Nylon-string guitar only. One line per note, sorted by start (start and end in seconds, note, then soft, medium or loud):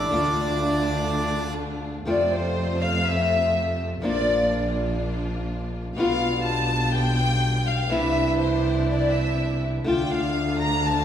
0.00 0.10 G3 medium
0.00 0.11 C#4 loud
0.00 0.11 E4 medium
0.10 2.05 D3 medium
0.10 2.06 A3 medium
0.10 2.06 D4 medium
0.10 2.07 F4 medium
2.05 4.01 C3 medium
2.05 4.01 F3 medium
2.05 4.02 A3 medium
2.05 4.02 C4 medium
2.05 4.05 F4 medium
4.02 5.96 F3 medium
4.02 5.96 A#3 medium
4.02 5.98 D4 medium
4.02 5.97 F4 medium
5.96 7.88 B2 medium
5.96 7.89 D3 medium
5.96 7.89 G3 medium
5.96 7.90 B3 medium
5.96 7.90 F4 medium
7.88 9.84 C3 medium
7.88 9.84 E3 medium
7.88 9.85 G3 medium
7.88 9.86 D4 medium
7.88 9.86 E4 medium
9.84 11.05 D3 medium
9.84 11.05 A3 medium
9.84 11.05 D4 medium
9.84 11.05 F4 medium